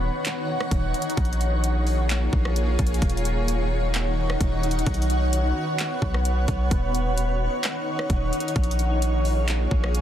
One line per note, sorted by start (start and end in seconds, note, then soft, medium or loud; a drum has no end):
0.00 0.10 D#1 loud
0.00 1.16 D#3 medium
0.00 1.16 D#4 medium
0.00 1.16 C#5 medium
0.00 1.16 F#5 medium
0.25 clap loud
0.25 closed hi-hat medium
0.61 cross-stick loud
0.71 0.93 D#1 loud
0.71 kick loud
0.71 closed hi-hat medium
0.94 closed hi-hat medium
1.02 closed hi-hat medium
1.10 closed hi-hat medium
1.17 2.29 A#1 loud
1.17 3.00 A#3 medium
1.17 3.00 F4 medium
1.17 3.00 G#4 medium
1.17 10.01 C#5 medium
1.17 kick loud
1.17 closed hi-hat medium
1.25 closed hi-hat medium
1.33 closed hi-hat medium
1.41 closed hi-hat medium
1.64 closed hi-hat medium
1.87 open hi-hat soft
2.10 clap loud
2.10 closed hi-hat medium
2.33 2.77 A#1 loud
2.33 kick loud
2.45 cross-stick loud
2.56 closed hi-hat medium
2.79 3.01 A#1 loud
2.79 kick medium
2.79 closed hi-hat medium
2.87 closed hi-hat medium
2.94 closed hi-hat medium
3.02 4.36 D#1 loud
3.02 4.85 D#3 medium
3.02 4.85 D#4 medium
3.02 8.52 F#5 medium
3.02 kick loud
3.02 closed hi-hat medium
3.10 closed hi-hat medium
3.17 closed hi-hat medium
3.25 closed hi-hat medium
3.48 closed hi-hat medium
3.94 clap loud
3.94 closed hi-hat medium
4.30 cross-stick loud
4.41 4.85 D#1 loud
4.41 kick loud
4.41 closed hi-hat medium
4.63 closed hi-hat medium
4.71 closed hi-hat medium
4.79 closed hi-hat medium
4.86 5.53 B1 loud
4.86 6.69 B3 medium
4.86 6.69 B4 medium
4.86 kick loud
4.86 closed hi-hat medium
4.94 closed hi-hat medium
5.02 closed hi-hat medium
5.10 closed hi-hat medium
5.33 closed hi-hat medium
5.79 clap loud
5.79 closed hi-hat medium
6.02 6.46 B1 loud
6.02 kick loud
6.14 cross-stick loud
6.25 closed hi-hat medium
6.48 6.70 B1 loud
6.48 kick medium
6.48 closed hi-hat medium
6.71 7.49 D#1 loud
6.71 8.54 D#3 medium
6.71 8.54 D#4 medium
6.71 kick loud
6.71 closed hi-hat medium
6.95 closed hi-hat medium
7.18 closed hi-hat medium
7.63 clap loud
7.63 closed hi-hat medium
7.99 cross-stick loud
8.10 8.32 D#1 loud
8.10 kick loud
8.10 closed hi-hat medium
8.33 closed hi-hat medium
8.40 closed hi-hat medium
8.48 closed hi-hat medium
8.56 9.67 A#1 loud
8.56 10.01 A#3 medium
8.56 10.01 F4 medium
8.56 10.01 G#4 medium
8.56 kick loud
8.56 closed hi-hat medium
8.64 closed hi-hat medium
8.71 closed hi-hat medium
8.79 closed hi-hat medium
9.02 closed hi-hat medium
9.25 open hi-hat soft
9.48 clap loud
9.48 closed hi-hat medium
9.71 10.01 A#1 loud
9.71 kick loud
9.84 cross-stick loud
9.95 closed hi-hat medium